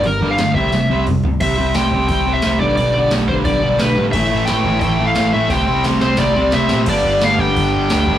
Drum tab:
CC |--------|x-------|--------|x-------|
HH |o-o-o-o-|o-o-o-o-|o-o-o-o-|--o-o-o-|
SD |--o-o---|--o---o-|--o---o-|--o---o-|
T1 |-----o--|--------|--------|--------|
T2 |------o-|--------|--------|--------|
FT |-------o|--------|--------|--------|
BD |---o----|o--oo--o|---oo---|o--oo---|

CC |--------|x-------|
HH |o-o-o-o-|o-o-o-o-|
SD |o-ooo-oo|--o---o-|
T1 |--------|--------|
T2 |--------|--------|
FT |--------|--------|
BD |o---o---|oo-oo--o|